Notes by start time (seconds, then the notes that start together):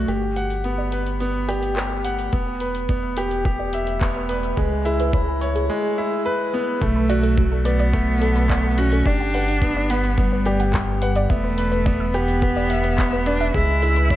Already playing: A3 F#4
0.08 G1 G4 D5, closed hi-hat
0.22 F#5
0.36 B4 F#5, closed hi-hat
0.50 closed hi-hat
0.64 B3 B4, closed hi-hat
0.78 D5
0.92 B4 F#5, closed hi-hat
1.06 B4, closed hi-hat
1.20 B3, closed hi-hat
1.35 B4
1.48 G4 D5, closed hi-hat
1.62 F#5, closed hi-hat
1.77 G4 B4, clap, closed hi-hat
2.04 B4 F#5, closed hi-hat
2.19 D5, closed hi-hat
2.33 E1 B3 E5, kick, closed hi-hat
2.47 B4
2.60 B4, closed hi-hat
2.75 B4, closed hi-hat
2.89 B3 D5, kick, closed hi-hat
3.03 E5
3.17 G4 B4, closed hi-hat
3.31 closed hi-hat
3.45 G4 B4, kick, closed hi-hat
3.59 D5
3.73 E5, closed hi-hat
3.87 B4, closed hi-hat
4.01 B3, kick, clap, closed hi-hat
4.16 B4
4.29 B4 D5, closed hi-hat
4.43 E5, closed hi-hat
4.57 C#2 G#3 G#4, kick, closed hi-hat
4.85 E4 G#4, closed hi-hat
5.00 B4, closed hi-hat
5.13 E4 C#5, kick, closed hi-hat
5.28 G#4
5.41 C#5, closed hi-hat
5.55 G#4, closed hi-hat
5.70 G#3
5.98 E4
6.26 B4
6.53 B3
6.81 B1 A3 A4, kick, closed hi-hat
6.96 B4
7.10 F#4 D5, closed hi-hat
7.23 A4, closed hi-hat
7.37 F#4, kick, closed hi-hat
7.52 A4
7.65 B3 B4 D5, closed hi-hat
7.79 D5, closed hi-hat
7.93 A3 A4, kick, closed hi-hat
8.22 A4, closed hi-hat
8.36 B4, closed hi-hat
8.50 A3 D5, kick, clap, closed hi-hat
8.64 A4
8.78 C#4 F#4, closed hi-hat
8.92 A4, closed hi-hat
9.06 G1 D4 G4 D5, kick, closed hi-hat
9.21 F#5
9.34 B4 F#5, closed hi-hat
9.48 closed hi-hat
9.62 B3 B4, kick, closed hi-hat
9.77 D5
9.90 B3 B4 F#5, closed hi-hat
10.04 B4, closed hi-hat
10.17 G3 B3, kick, closed hi-hat
10.32 B4
10.46 G4 D5, closed hi-hat
10.60 F#5, closed hi-hat
10.74 G4 B4, kick, clap, closed hi-hat
11.02 B4 F#5, closed hi-hat
11.16 D5, closed hi-hat
11.29 E1 A3 B3 E5, kick, closed hi-hat
11.44 B4
11.58 B4, closed hi-hat
11.72 B4, closed hi-hat
11.86 B3 D5, kick, closed hi-hat
12.00 E5
12.14 B3 G4 B4, closed hi-hat
12.28 closed hi-hat
12.42 G4 B4, kick, closed hi-hat
12.56 D5
12.70 E5, closed hi-hat
12.84 B4, closed hi-hat
12.98 B3, kick, clap, closed hi-hat
13.13 B4
13.26 D4 B4 D5, closed hi-hat
13.40 E5, closed hi-hat
13.54 C#2 G#3 E4 G#4, kick, closed hi-hat
13.82 E4 G#4, closed hi-hat
13.96 B4, closed hi-hat
14.10 E4 C#5, kick, closed hi-hat